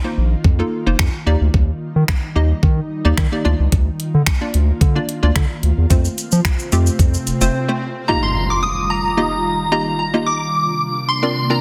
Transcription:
0.00 1.25 D#3 medium
0.00 1.25 A#3 medium
0.00 1.25 F4 medium
0.04 0.45 A#3 medium
0.04 0.45 D#4 medium
0.04 0.45 F4 medium
0.04 0.45 C5 medium
0.18 0.35 A#1 medium
0.44 0.62 F2 loud
0.44 kick loud
0.59 0.79 A#3 medium
0.59 0.79 D#4 medium
0.59 0.79 F4 medium
0.59 0.80 A4 medium
0.86 0.95 F1 medium
0.86 1.25 A#3 medium
0.86 1.25 D#4 medium
0.86 1.27 F4 medium
0.86 1.27 C5 loud
0.99 1.08 F2 loud
0.99 finger snap loud
0.99 kick loud
1.26 1.36 D#2 loud
1.26 5.86 D#3 medium
1.26 3.43 G3 medium
1.26 2.14 A#3 medium
1.26 2.14 D#4 medium
1.26 3.43 D#4 medium
1.26 2.14 G4 medium
1.26 2.14 D5 loud
1.41 1.49 D2 medium
1.54 1.71 D#2 loud
1.54 kick loud
1.96 2.04 D#3 medium
2.08 finger snap loud
2.08 kick loud
2.35 2.53 D#2 medium
2.35 2.87 A#3 medium
2.35 2.87 D#4 medium
2.35 2.87 G4 medium
2.35 2.87 D#5 medium
2.63 2.80 D#3 loud
2.63 kick loud
3.05 3.13 D#2 medium
3.05 3.25 A#3 medium
3.05 3.25 D#4 medium
3.05 3.25 G4 medium
3.05 3.25 D5 loud
3.17 3.27 D#3 loud
3.17 finger snap loud
3.17 kick loud
3.32 3.43 A#3 medium
3.32 3.45 D#4 medium
3.32 3.45 G4 medium
3.32 3.44 D5 loud
3.45 3.54 D2 loud
3.45 4.21 A#3 medium
3.45 5.88 A#3 medium
3.45 4.21 D4 medium
3.45 4.21 F4 medium
3.45 8.05 F4 medium
3.45 4.22 D5 loud
3.60 3.68 C#2 medium
3.72 3.89 D2 loud
3.72 kick loud
3.72 closed hi-hat medium
3.72 swell medium
4.00 closed hi-hat soft
4.14 4.22 D3 loud
4.26 finger snap loud
4.26 kick loud
4.26 closed hi-hat medium
4.41 4.81 A#3 medium
4.41 4.81 D4 medium
4.41 4.81 F4 medium
4.41 4.81 D5 loud
4.54 4.71 D2 medium
4.54 closed hi-hat medium
4.81 4.98 D3 loud
4.81 kick loud
4.81 closed hi-hat medium
4.95 5.16 A#3 medium
4.95 5.16 D4 medium
4.95 5.16 F4 medium
4.95 5.16 D5 medium
5.09 closed hi-hat medium
5.23 5.31 D2 medium
5.23 5.74 A#3 medium
5.23 5.74 D4 medium
5.23 5.74 F4 medium
5.23 5.74 D5 loud
5.36 5.45 D3 loud
5.36 finger snap loud
5.36 kick loud
5.36 closed hi-hat medium
5.63 5.72 D2 loud
5.63 closed hi-hat soft
5.78 5.86 E2 medium
5.90 6.08 F2 loud
5.90 8.06 C3 medium
5.90 8.06 A3 medium
5.90 6.52 A3 medium
5.90 6.52 C4 medium
5.90 6.52 F4 medium
5.90 6.52 C5 loud
5.90 kick loud
5.90 closed hi-hat medium
5.90 shaker medium
6.05 shaker medium
6.18 closed hi-hat soft
6.18 shaker soft
6.32 6.40 F3 loud
6.32 shaker medium
6.45 finger snap loud
6.45 kick loud
6.45 closed hi-hat medium
6.45 shaker medium
6.59 shaker medium
6.72 6.89 F2 medium
6.72 7.24 A3 medium
6.72 7.24 C4 medium
6.72 7.24 F4 medium
6.72 7.24 G4 medium
6.72 closed hi-hat medium
6.72 shaker medium
6.87 shaker medium
6.99 7.16 F2 loud
6.99 kick loud
6.99 closed hi-hat medium
6.99 shaker medium
7.14 shaker soft
7.27 7.33 F1 soft
7.27 closed hi-hat medium
7.27 shaker medium
7.41 7.49 F1 loud
7.41 7.61 A3 loud
7.41 7.61 C4 medium
7.41 7.61 F4 medium
7.41 7.61 C5 loud
7.41 shaker medium
7.68 8.08 A3 medium
7.68 8.08 C4 medium
7.68 8.07 F4 medium
7.68 8.09 C5 loud
8.08 10.24 D#3 medium
8.08 10.24 G3 medium
8.08 8.90 A#3 medium
8.08 8.90 D#4 medium
8.08 10.24 F4 medium
8.08 8.90 F4 medium
8.08 8.90 G4 medium
8.08 8.91 D#5 medium
8.08 8.22 A#5 loud
8.08 impact medium
8.23 8.51 C6 loud
8.50 8.56 D6 loud
8.63 8.91 D#6 loud
8.90 9.68 A#5 medium
9.17 9.59 A#3 medium
9.17 9.59 D#4 medium
9.17 9.59 F4 medium
9.17 9.59 G4 medium
9.17 9.59 D#5 medium
9.72 10.03 A#3 medium
9.72 10.03 D#4 medium
9.72 10.03 F4 medium
9.72 10.03 G4 medium
9.72 10.03 D#5 loud
9.72 9.98 A#5 loud
9.99 10.27 A#5 medium
10.14 10.27 A#3 medium
10.14 10.27 D#4 medium
10.14 10.27 F4 medium
10.14 10.27 G4 medium
10.14 10.27 D#5 medium
10.26 11.61 C3 medium
10.26 11.61 A#3 medium
10.26 11.61 D4 medium
10.26 11.11 D6 loud
11.09 11.51 C6 medium
11.23 11.43 C4 medium
11.23 11.43 D4 medium
11.23 11.43 F4 medium
11.23 11.43 A#4 medium
11.23 11.43 D5 medium
11.50 11.61 C4 medium
11.50 11.61 D4 medium
11.50 11.61 F4 medium
11.50 11.61 A#4 medium
11.50 11.61 D5 medium
11.50 11.61 A#5 medium

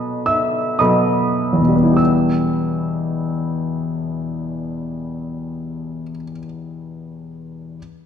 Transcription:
0.00 0.77 B2 soft
0.00 0.77 F#3 soft
0.00 0.77 B3 soft
0.00 0.77 A4 soft
0.00 0.23 D#5 medium
0.00 0.23 B5 soft
0.00 0.26 D#6 medium
0.26 0.76 E5 soft
0.26 0.80 E6 medium
0.79 1.60 B2 soft
0.79 1.95 F#3 soft
0.79 1.74 B3 soft
0.79 1.95 A4 soft
0.79 1.94 D#5 soft
0.79 1.94 B5 soft
0.79 1.98 D#6 medium
1.53 6.01 E2 soft
1.61 6.09 B2 soft
1.68 6.16 G3 soft
1.76 6.23 B3 soft
1.84 6.31 E4 soft
1.91 6.39 G4 soft
1.97 6.44 E6 soft

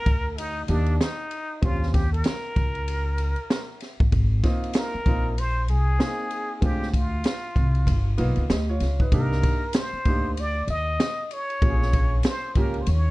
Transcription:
0.00 0.39 A#4 loud
0.06 0.65 D2 medium
0.06 kick medium
0.06 ride medium
0.37 0.70 D#4 loud
0.37 ride medium
0.68 0.97 D#2 medium
0.68 0.92 A#3 medium
0.68 1.02 D4 medium
0.68 0.92 D4 medium
0.68 0.92 D#4 medium
0.68 0.93 G4 medium
0.68 ride medium
0.86 ride soft
1.01 1.63 D#4 medium
1.01 snare medium
1.01 hi-hat pedal soft
1.01 ride medium
1.31 ride medium
1.62 2.21 D#2 loud
1.62 2.01 C4 medium
1.62 2.01 C#4 medium
1.62 2.01 F4 medium
1.62 1.92 F4 medium
1.62 2.01 G4 medium
1.62 kick loud
1.62 ride medium
1.83 snare soft
1.94 2.11 G4 medium
1.94 kick medium
1.94 snare soft
1.94 ride medium
2.13 3.77 A#4 medium
2.13 ride soft
2.24 snare loud
2.24 hi-hat pedal medium
2.24 ride medium
2.56 3.33 C#2 medium
2.56 kick medium
2.56 ride medium
2.75 ride soft
2.88 ride medium
3.18 ride medium
3.36 ride soft
3.50 snare loud
3.50 hi-hat pedal soft
3.50 ride medium
3.80 snare soft
3.80 ride medium
4.00 4.11 A1 medium
4.00 kick loud
4.12 4.41 G#1 loud
4.12 kick loud
4.12 ride medium
4.43 4.90 A#3 medium
4.43 4.90 C4 medium
4.43 4.90 D#4 medium
4.43 4.90 F4 medium
4.43 kick medium
4.43 snare soft
4.43 ride medium
4.64 ride soft
4.73 snare loud
4.73 hi-hat pedal medium
4.73 ride medium
4.78 5.41 A#4 loud
4.94 muted upright bass stroke soft
5.06 5.70 A#1 medium
5.06 5.30 A#3 medium
5.06 5.30 C4 medium
5.06 5.30 D#4 medium
5.06 5.30 F4 medium
5.06 kick medium
5.06 ride medium
5.38 5.69 C5 loud
5.38 ride medium
5.68 5.98 C2 medium
5.68 6.64 G#4 loud
5.68 ride medium
5.99 6.62 A#3 medium
5.99 6.60 C4 medium
5.99 6.62 D#4 medium
5.99 6.62 G#4 medium
5.99 snare loud
5.99 hi-hat pedal soft
5.99 ride medium
6.31 ride medium
6.61 7.21 D2 loud
6.61 6.85 G#3 medium
6.61 6.86 C4 medium
6.61 6.86 D4 medium
6.61 6.86 F4 medium
6.61 6.96 G4 medium
6.61 kick loud
6.61 ride medium
6.82 snare soft
6.94 8.19 F4 medium
6.94 kick medium
6.94 ride medium
7.24 snare loud
7.24 hi-hat pedal medium
7.24 ride medium
7.56 7.89 C2 loud
7.56 kick medium
7.56 ride soft
7.75 ride soft
7.87 8.16 G1 loud
7.87 kick medium
7.87 ride medium
8.18 8.36 B1 medium
8.18 8.42 A#3 medium
8.18 8.42 B3 medium
8.18 8.42 D#4 medium
8.18 8.42 F4 medium
8.18 ride medium
8.36 8.48 C#2 medium
8.36 ride soft
8.50 8.78 D2 medium
8.50 8.68 G4 medium
8.50 8.68 D#5 medium
8.50 snare loud
8.50 hi-hat pedal soft
8.50 ride medium
8.69 8.99 F4 medium
8.69 8.99 C#5 medium
8.80 9.09 C#2 medium
8.80 snare soft
8.80 ride medium
9.00 9.12 D#4 medium
9.00 9.30 B4 medium
9.00 kick medium
9.12 9.40 C2 medium
9.12 9.58 A#3 medium
9.12 9.58 D4 medium
9.12 9.59 D#4 medium
9.12 9.59 G4 medium
9.12 9.78 A#4 medium
9.12 kick loud
9.12 ride medium
9.32 snare soft
9.43 kick medium
9.43 ride medium
9.73 10.42 C5 medium
9.73 snare loud
9.73 hi-hat pedal medium
9.73 ride medium
9.93 muted upright bass stroke soft
10.05 10.64 D2 medium
10.05 10.30 A#3 medium
10.05 10.30 D4 medium
10.05 10.30 D#4 medium
10.05 10.31 G4 medium
10.05 kick medium
10.05 ride medium
10.37 10.70 D5 loud
10.37 ride medium
10.68 10.96 D#2 medium
10.68 11.34 D#5 loud
10.68 ride medium
11.00 snare loud
11.00 hi-hat pedal soft
11.00 ride medium
11.31 12.25 C#5 loud
11.31 ride medium
11.50 ride soft
11.62 12.20 A#1 loud
11.62 12.51 A#3 medium
11.62 12.51 C#4 medium
11.62 12.51 F4 medium
11.62 11.70 G4 medium
11.62 kick loud
11.62 ride medium
11.70 12.55 G#4 medium
11.82 snare soft
11.93 kick medium
11.93 ride medium
12.23 snare loud
12.23 hi-hat pedal medium
12.23 ride medium
12.27 12.59 C5 loud
12.55 12.84 C#2 medium
12.55 12.79 A#3 medium
12.55 12.79 C#4 medium
12.55 12.80 F4 medium
12.55 12.80 G4 medium
12.55 12.83 A#4 medium
12.55 kick medium
12.55 ride medium
12.74 ride soft
12.81 12.90 C5 medium
12.86 13.11 D#2 medium
12.86 13.11 C#5 medium
12.86 ride medium

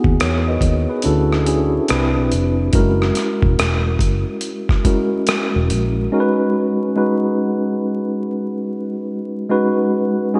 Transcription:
0.00 0.70 B3 medium
0.00 0.70 D#4 medium
0.00 0.70 E4 medium
0.00 0.71 F#4 medium
0.00 0.21 G#4 medium
0.04 0.18 D#2 medium
0.04 kick medium
0.20 0.57 E2 medium
0.20 0.46 A#4 medium
0.20 0.46 C#5 medium
0.20 cross-stick loud
0.20 closed hi-hat medium
0.48 0.88 B4 medium
0.48 0.88 D#5 medium
0.61 0.85 D#2 medium
0.61 kick medium
0.61 closed hi-hat medium
0.90 1.30 G#4 medium
0.90 1.29 B4 medium
1.02 1.78 D2 medium
1.02 1.40 C#4 medium
1.02 1.40 D4 medium
1.02 1.41 E4 medium
1.02 1.41 F#4 medium
1.02 1.41 A4 loud
1.02 closed hi-hat medium
1.33 cross-stick soft
1.46 1.88 C#4 medium
1.46 1.88 D4 medium
1.46 1.88 E4 medium
1.46 1.89 F#4 medium
1.46 1.89 G#4 medium
1.46 closed hi-hat medium
1.88 2.17 C2 loud
1.88 2.61 C4 medium
1.88 2.61 D4 medium
1.88 2.61 E4 medium
1.88 2.62 G4 medium
1.88 2.62 B4 medium
1.88 cross-stick loud
1.88 closed hi-hat medium
2.17 2.30 B1 medium
2.32 2.68 F1 medium
2.32 closed hi-hat medium
2.73 3.10 F#1 loud
2.73 4.08 G#3 medium
2.73 4.08 C#4 medium
2.73 4.08 E4 medium
2.73 4.08 F#4 medium
2.73 4.09 A#4 loud
2.73 kick medium
2.73 closed hi-hat medium
3.02 cross-stick soft
3.15 cross-stick soft
3.15 closed hi-hat medium
3.42 3.56 E1 medium
3.42 kick medium
3.59 3.95 E1 medium
3.59 cross-stick loud
3.59 closed hi-hat medium
3.99 4.23 F#1 medium
3.99 kick medium
3.99 closed hi-hat medium
4.41 closed hi-hat medium
4.69 kick medium
4.69 cross-stick soft
4.85 5.89 G#3 medium
4.85 5.89 C#4 medium
4.85 5.89 E4 medium
4.85 5.89 F#4 medium
4.85 5.89 A#4 medium
4.85 kick medium
4.85 closed hi-hat medium
5.27 cross-stick loud
5.27 closed hi-hat medium
5.56 5.68 E1 medium
5.70 6.06 A#1 medium
5.70 closed hi-hat medium
6.12 6.83 G#3 medium
6.12 6.83 C#4 medium
6.12 6.83 D#4 medium
6.12 6.84 F#4 medium
6.12 6.21 A#4 medium
6.20 6.87 B4 loud
6.96 8.30 G#3 medium
6.96 8.31 C#4 medium
6.96 8.31 D#4 medium
6.96 8.31 F#4 medium
6.96 8.31 B4 medium
9.49 10.21 G#3 medium
9.49 10.21 C#4 medium
9.49 10.21 D#4 medium
9.49 10.22 F#4 medium
9.49 10.22 B4 loud
10.34 10.40 G#3 medium
10.34 10.40 C#4 medium
10.34 10.40 D#4 medium
10.34 10.40 F#4 medium
10.34 10.40 G#4 medium

